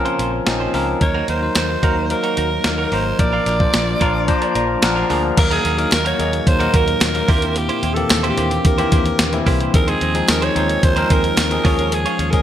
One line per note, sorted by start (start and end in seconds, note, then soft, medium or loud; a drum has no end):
0.00 0.97 C#3 medium
0.00 0.46 F3 medium
0.00 0.97 A#3 medium
0.00 0.46 C4 medium
0.00 0.47 C#4 medium
0.00 0.75 A#4 medium
0.00 0.97 C5 medium
0.05 0.18 A#3 medium
0.05 0.18 C#4 medium
0.05 0.19 F4 medium
0.05 0.19 C5 medium
0.05 closed hi-hat soft
0.19 0.39 A#1 medium
0.19 0.36 A#3 medium
0.19 0.33 C#4 medium
0.19 0.32 F4 medium
0.19 0.31 C5 medium
0.19 closed hi-hat medium
0.33 muted clean electric guitar stroke soft
0.46 0.66 A#1 medium
0.46 0.65 F3 medium
0.46 0.65 C4 medium
0.46 0.65 C#4 medium
0.46 0.66 D#4 loud
0.46 muted clean electric guitar stroke soft
0.46 snare loud
0.46 closed hi-hat medium
0.60 0.72 A#3 soft
0.60 0.73 C#4 soft
0.60 0.73 F4 medium
0.60 0.73 C5 medium
0.73 0.93 C#2 medium
0.73 0.93 F3 medium
0.73 0.91 A#3 medium
0.73 0.93 C4 medium
0.73 0.87 C#4 loud
0.73 0.93 C#4 medium
0.73 0.87 F4 medium
0.73 0.93 A#4 medium
0.73 0.86 C5 loud
0.73 open hi-hat medium
0.87 muted clean electric guitar stroke soft
1.01 1.21 D#2 loud
1.01 3.17 D#3 medium
1.01 1.29 F#3 medium
1.01 1.29 A#3 medium
1.01 3.17 D#4 medium
1.01 1.30 D#4 medium
1.01 3.17 F#4 medium
1.01 3.17 A#4 medium
1.01 1.30 A#4 medium
1.01 1.27 C#5 medium
1.01 muted clean electric guitar stroke soft
1.01 kick loud
1.01 closed hi-hat medium
1.14 1.27 A#3 medium
1.14 1.28 D#4 medium
1.14 1.28 F#4 medium
1.14 1.29 A#4 medium
1.28 1.48 D#2 medium
1.28 1.42 A#3 medium
1.28 1.42 D#4 medium
1.28 1.41 F#4 medium
1.28 1.41 A#4 medium
1.28 1.55 C5 medium
1.28 closed hi-hat medium
1.42 1.70 F#3 medium
1.42 1.70 A#3 medium
1.42 1.70 D#4 medium
1.42 1.71 C5 medium
1.42 muted clean electric guitar stroke soft
1.55 1.75 D#2 medium
1.55 2.13 C5 medium
1.55 muted clean electric guitar stroke soft
1.55 snare loud
1.55 clap medium
1.55 closed hi-hat medium
1.69 muted clean electric guitar stroke medium
1.83 2.12 D#2 medium
1.83 2.02 F#3 medium
1.83 2.00 A#3 medium
1.83 2.02 A#3 medium
1.83 1.96 D#4 medium
1.83 2.02 D#4 medium
1.83 1.96 F#4 medium
1.83 1.95 A#4 medium
1.83 2.02 A#4 medium
1.83 kick medium
1.83 closed hi-hat medium
1.96 muted clean electric guitar stroke soft
2.10 2.48 F#3 medium
2.10 2.48 A#3 medium
2.10 2.48 D#4 medium
2.10 2.48 A#4 medium
2.10 2.95 A#4 medium
2.10 muted clean electric guitar stroke soft
2.10 closed hi-hat medium
2.23 2.36 A#3 medium
2.23 2.36 D#4 soft
2.23 2.37 F#4 medium
2.23 2.37 A#4 medium
2.23 closed hi-hat soft
2.37 2.57 D#2 medium
2.37 2.54 A#3 medium
2.37 2.51 D#4 medium
2.37 2.50 F#4 medium
2.37 2.50 A#4 loud
2.37 closed hi-hat medium
2.51 muted clean electric guitar stroke soft
2.64 2.84 D#2 medium
2.64 2.84 F#3 medium
2.64 2.84 A#3 medium
2.64 2.84 D#4 medium
2.64 2.84 A#4 medium
2.64 muted clean electric guitar stroke soft
2.64 snare loud
2.64 clap medium
2.64 closed hi-hat medium
2.78 2.91 A#3 soft
2.78 2.91 D#4 soft
2.78 2.92 F#4 soft
2.78 2.92 A#4 medium
2.92 3.11 G#1 medium
2.92 3.11 F#3 medium
2.92 3.09 A#3 medium
2.92 3.11 A#3 medium
2.92 3.05 D#4 medium
2.92 3.11 D#4 medium
2.92 3.05 F#4 medium
2.92 3.11 A#4 medium
2.92 3.04 A#4 medium
2.92 3.22 C5 loud
2.92 open hi-hat medium
3.06 muted clean electric guitar stroke soft
3.19 3.39 A#1 medium
3.19 3.47 F3 medium
3.19 5.35 A#3 medium
3.19 3.48 A#3 medium
3.19 5.35 D4 medium
3.19 3.48 D4 medium
3.19 5.35 F4 medium
3.19 3.48 A#4 medium
3.19 4.84 D5 loud
3.19 muted clean electric guitar stroke medium
3.19 kick loud
3.19 closed hi-hat medium
3.33 3.45 A#3 medium
3.33 3.45 D4 medium
3.33 3.46 F4 medium
3.33 3.46 A#4 medium
3.46 3.66 A#1 loud
3.46 3.60 A#3 medium
3.46 3.60 D4 medium
3.46 3.59 F4 medium
3.46 3.59 A#4 medium
3.46 clap medium
3.46 closed hi-hat medium
3.60 3.88 F3 medium
3.60 3.88 A#3 medium
3.60 3.88 D4 medium
3.60 3.89 C5 medium
3.60 muted clean electric guitar stroke soft
3.60 kick medium
3.74 3.93 A#1 medium
3.74 muted clean electric guitar stroke soft
3.74 snare loud
3.74 clap medium
3.74 closed hi-hat medium
3.87 muted clean electric guitar stroke soft
4.00 4.31 A#1 medium
4.00 4.20 F3 medium
4.00 4.18 A#3 medium
4.00 4.20 A#3 medium
4.00 4.14 D4 medium
4.00 4.20 D4 medium
4.00 4.14 F4 loud
4.00 4.13 A#4 medium
4.00 4.20 A#4 loud
4.00 4.27 C6 medium
4.00 kick medium
4.00 closed hi-hat medium
4.14 muted clean electric guitar stroke soft
4.27 4.65 F3 medium
4.27 4.66 A#3 medium
4.27 4.66 D4 medium
4.27 4.66 C5 loud
4.27 4.54 A#5 medium
4.27 muted clean electric guitar stroke soft
4.27 kick medium
4.27 closed hi-hat medium
4.41 4.54 A#3 medium
4.41 4.54 D4 medium
4.41 4.55 F4 medium
4.41 4.55 A#4 medium
4.41 closed hi-hat soft
4.55 4.75 A#1 medium
4.55 4.72 A#3 medium
4.55 4.69 D4 medium
4.55 4.68 F4 medium
4.55 4.67 A#4 loud
4.55 4.81 A#5 medium
4.55 closed hi-hat medium
4.69 muted clean electric guitar stroke soft
4.82 5.02 A#1 medium
4.82 5.01 F3 medium
4.82 5.02 A#3 medium
4.82 5.02 D4 medium
4.82 5.02 A#4 loud
4.82 5.08 F#5 medium
4.82 muted clean electric guitar stroke medium
4.82 snare loud
4.82 clap medium
4.82 closed hi-hat medium
4.96 5.08 A#3 soft
4.96 5.09 D4 medium
4.96 5.09 F4 medium
4.96 5.10 A#4 medium
5.09 5.30 D2 medium
5.09 5.28 F3 medium
5.09 5.29 A#3 medium
5.09 5.27 A#3 medium
5.09 5.29 D4 medium
5.09 5.23 D4 medium
5.09 5.23 F4 medium
5.09 5.29 G#4 medium
5.09 5.22 A#4 medium
5.09 5.35 F5 medium
5.09 open hi-hat medium
5.23 muted clean electric guitar stroke soft
5.37 5.57 D#2 loud
5.37 9.70 A#2 medium
5.37 5.65 F#3 medium
5.37 5.66 A#3 medium
5.37 7.27 D#4 medium
5.37 5.66 D#4 medium
5.37 7.27 F#4 medium
5.37 7.27 A#4 medium
5.37 5.66 A#4 medium
5.37 5.51 A#4 medium
5.37 muted clean electric guitar stroke soft
5.37 kick loud
5.37 closed hi-hat medium
5.37 crash loud
5.51 5.63 A#3 medium
5.51 5.64 D#4 medium
5.51 5.64 F#4 medium
5.51 5.95 G#4 medium
5.51 5.65 A#4 medium
5.51 closed hi-hat medium
5.64 5.84 D#2 medium
5.64 5.78 A#3 medium
5.64 5.78 D#4 medium
5.64 5.77 F#4 medium
5.64 5.77 A#4 medium
5.64 closed hi-hat medium
5.77 6.06 F#3 medium
5.77 6.06 A#3 medium
5.77 6.06 D#4 medium
5.77 6.07 A#4 medium
5.77 muted clean electric guitar stroke soft
5.77 closed hi-hat soft
5.92 6.12 D#2 loud
5.92 6.06 A#4 loud
5.92 muted clean electric guitar stroke soft
5.92 snare loud
5.92 clap medium
5.92 closed hi-hat medium
5.92 tambourine medium
6.05 6.18 A#3 medium
6.05 6.18 D#4 medium
6.05 6.19 F#4 medium
6.05 6.19 A#4 medium
6.05 6.49 C#5 loud
6.05 closed hi-hat medium
6.18 6.39 D#2 loud
6.18 6.47 F#3 medium
6.18 6.32 A#3 medium
6.18 6.47 A#3 medium
6.18 6.47 D#4 medium
6.18 6.32 D#4 medium
6.18 6.32 F#4 medium
6.18 6.48 G#4 medium
6.18 6.31 A#4 medium
6.18 closed hi-hat medium
6.33 muted clean electric guitar stroke soft
6.33 closed hi-hat medium
6.46 6.66 D#2 loud
6.46 6.77 C5 loud
6.46 muted clean electric guitar stroke soft
6.46 kick loud
6.46 closed hi-hat medium
6.59 6.97 F#3 medium
6.59 6.98 A#3 medium
6.59 6.72 A#3 medium
6.59 6.98 D#4 medium
6.59 6.72 D#4 medium
6.59 6.73 F#4 medium
6.59 6.73 A#4 medium
6.59 6.98 A#4 medium
6.59 closed hi-hat soft
6.73 6.94 D#2 medium
6.73 6.87 A#3 medium
6.73 6.87 D#4 medium
6.73 6.86 F#4 medium
6.73 6.86 A#4 medium
6.73 7.59 A#4 loud
6.73 kick medium
6.73 closed hi-hat medium
6.87 muted clean electric guitar stroke soft
6.87 closed hi-hat soft
7.01 7.21 D#2 medium
7.01 muted clean electric guitar stroke soft
7.01 snare loud
7.01 clap medium
7.01 closed hi-hat loud
7.01 tambourine medium
7.14 7.28 F#3 medium
7.14 7.27 A#3 medium
7.14 7.29 D#4 medium
7.14 7.29 A#4 medium
7.14 muted clean electric guitar stroke soft
7.14 closed hi-hat soft
7.28 7.68 D#2 loud
7.28 7.42 A#3 medium
7.28 7.83 A#3 medium
7.28 9.72 A#3 medium
7.28 7.83 C4 medium
7.28 9.72 D4 medium
7.28 7.83 E4 medium
7.28 7.42 E4 medium
7.28 9.72 E4 medium
7.28 7.41 G4 medium
7.28 7.83 G4 medium
7.28 7.41 C5 medium
7.28 kick loud
7.28 open hi-hat medium
7.42 7.54 A#3 medium
7.42 7.55 E4 medium
7.42 7.55 G4 medium
7.42 7.55 C5 medium
7.42 closed hi-hat medium
7.55 7.95 G4 medium
7.55 muted clean electric guitar stroke soft
7.55 closed hi-hat medium
7.69 7.81 A#3 medium
7.69 7.82 E4 medium
7.69 7.82 G4 medium
7.69 7.83 C5 medium
7.69 closed hi-hat medium
7.83 8.02 D#2 medium
7.83 7.96 A#3 medium
7.83 7.96 E4 medium
7.83 7.96 G4 medium
7.83 7.95 C5 medium
7.83 closed hi-hat medium
7.94 8.25 E3 medium
7.94 8.25 A#3 medium
7.94 8.25 C4 medium
7.94 8.25 G4 medium
7.94 8.29 A4 medium
7.94 muted clean electric guitar stroke soft
7.94 closed hi-hat medium
8.10 8.30 D#2 loud
8.10 muted clean electric guitar stroke soft
8.10 snare loud
8.10 clap medium
8.10 closed hi-hat medium
8.10 tambourine medium
8.23 8.36 A#3 medium
8.23 8.37 E4 medium
8.23 8.37 G4 medium
8.23 8.37 C5 medium
8.23 closed hi-hat medium
8.30 8.68 G4 medium
8.37 8.57 D#2 medium
8.37 8.65 E3 medium
8.37 8.51 A#3 medium
8.37 8.66 A#3 medium
8.37 8.66 C4 medium
8.37 8.51 E4 medium
8.37 8.66 G4 medium
8.37 8.50 G4 medium
8.37 8.50 C5 medium
8.37 closed hi-hat medium
8.51 closed hi-hat medium
8.65 8.84 D#2 loud
8.65 9.48 A#4 medium
8.65 muted clean electric guitar stroke soft
8.65 kick loud
8.65 closed hi-hat medium
8.78 9.16 E3 medium
8.78 9.16 A#3 medium
8.78 8.90 A#3 medium
8.78 9.16 C4 medium
8.78 8.91 E4 medium
8.78 8.91 G4 medium
8.78 9.16 G4 medium
8.78 8.92 C5 medium
8.78 closed hi-hat soft
8.92 9.12 D#2 medium
8.92 9.05 A#3 medium
8.92 9.05 E4 medium
8.92 9.05 G4 medium
8.92 9.04 C5 medium
8.92 kick medium
8.92 closed hi-hat medium
9.05 muted clean electric guitar stroke soft
9.05 closed hi-hat medium
9.19 9.39 D#2 loud
9.19 muted clean electric guitar stroke soft
9.19 snare loud
9.19 clap medium
9.19 closed hi-hat loud
9.19 tambourine medium
9.33 9.61 E3 medium
9.33 9.61 A#3 medium
9.33 9.61 C4 medium
9.33 9.62 E4 medium
9.33 muted clean electric guitar stroke soft
9.33 closed hi-hat medium
9.46 9.66 C2 medium
9.46 9.60 A#3 medium
9.46 9.60 E4 medium
9.46 9.60 G4 medium
9.46 9.59 C5 medium
9.46 kick medium
9.46 open hi-hat medium
9.60 9.73 A#3 medium
9.60 9.74 E4 medium
9.60 9.74 G4 medium
9.60 9.74 C5 medium
9.60 closed hi-hat medium
9.74 9.94 D#2 loud
9.74 10.02 F3 medium
9.74 11.63 F3 medium
9.74 11.63 G#3 medium
9.74 10.02 C4 medium
9.74 11.63 D#4 medium
9.74 10.02 D#4 medium
9.74 10.03 G#4 medium
9.74 9.90 A#4 medium
9.74 muted clean electric guitar stroke soft
9.74 kick loud
9.74 closed hi-hat medium
9.88 10.00 C4 medium
9.88 10.00 D#4 medium
9.88 10.01 G#4 medium
9.88 10.31 G#4 loud
9.88 10.01 C5 medium
9.88 closed hi-hat medium
10.01 10.21 D#2 loud
10.01 10.14 C4 medium
10.01 10.15 D#4 medium
10.01 10.14 G#4 medium
10.01 10.13 C5 medium
10.01 closed hi-hat medium
10.14 10.43 F3 medium
10.14 10.43 C4 medium
10.14 10.43 D#4 medium
10.14 10.43 G#4 medium
10.14 muted clean electric guitar stroke soft
10.14 closed hi-hat medium
10.28 10.48 D#2 medium
10.28 10.45 A#4 loud
10.28 muted clean electric guitar stroke soft
10.28 snare loud
10.28 clap medium
10.28 closed hi-hat medium
10.28 tambourine medium
10.42 10.54 C4 medium
10.42 10.55 D#4 medium
10.42 10.55 G#4 medium
10.42 10.56 C5 medium
10.42 10.86 C#5 loud
10.42 closed hi-hat medium
10.55 10.75 D#2 loud
10.55 10.84 F3 medium
10.55 10.69 C4 medium
10.55 10.84 C4 medium
10.55 10.84 D#4 medium
10.55 10.69 D#4 medium
10.55 10.68 G#4 medium
10.55 10.84 A#4 medium
10.55 10.68 C5 medium
10.55 closed hi-hat medium
10.69 closed hi-hat medium
10.83 11.03 D#2 loud
10.83 11.14 C5 loud
10.83 muted clean electric guitar stroke soft
10.83 kick loud
10.83 closed hi-hat medium
10.96 11.34 F3 medium
10.96 11.34 C4 medium
10.96 11.08 C4 medium
10.96 11.09 D#4 medium
10.96 11.35 D#4 medium
10.96 11.09 G#4 medium
10.96 11.35 A#4 medium
10.96 11.10 C5 medium
10.96 closed hi-hat soft
11.10 11.30 D#2 medium
11.10 11.23 C4 medium
11.10 11.24 D#4 medium
11.10 11.23 G#4 medium
11.10 11.96 A#4 loud
11.10 11.23 C5 medium
11.10 kick medium
11.10 closed hi-hat medium
11.24 muted clean electric guitar stroke soft
11.24 closed hi-hat soft
11.37 11.57 D#2 medium
11.37 muted clean electric guitar stroke soft
11.37 snare loud
11.37 clap medium
11.37 closed hi-hat loud
11.37 tambourine medium
11.51 11.63 F3 medium
11.51 11.65 C4 medium
11.51 11.65 D#4 medium
11.51 11.65 G#4 medium
11.51 muted clean electric guitar stroke soft
11.51 closed hi-hat soft
11.64 12.04 D#2 medium
11.64 12.19 F3 medium
11.64 12.20 G#3 medium
11.64 11.78 C#4 medium
11.64 12.42 C#4 medium
11.64 12.20 C#4 medium
11.64 12.42 F4 medium
11.64 11.78 F4 medium
11.64 12.42 G#4 medium
11.64 11.78 G#4 medium
11.64 12.20 G#4 medium
11.64 11.77 C#5 loud
11.64 kick loud
11.64 open hi-hat medium
11.78 11.91 C#4 soft
11.78 11.91 F4 medium
11.78 11.92 G#4 medium
11.78 11.92 C#5 medium
11.78 closed hi-hat medium
11.92 12.32 G#4 medium
11.92 muted clean electric guitar stroke soft
11.92 closed hi-hat medium
12.06 12.18 C#4 medium
12.06 12.18 F4 medium
12.06 12.19 G#4 medium
12.06 12.19 C#5 medium
12.06 closed hi-hat medium
12.19 12.39 D#2 loud
12.19 12.33 C#4 medium
12.19 12.33 F4 medium
12.19 12.32 G#4 medium
12.19 12.32 C#5 medium
12.19 closed hi-hat medium
12.31 12.42 F3 medium
12.31 12.42 G#3 medium
12.31 12.42 C#4 medium
12.31 12.42 G#4 medium
12.31 12.42 A#4 medium
12.31 muted clean electric guitar stroke soft
12.31 kick loud
12.31 closed hi-hat medium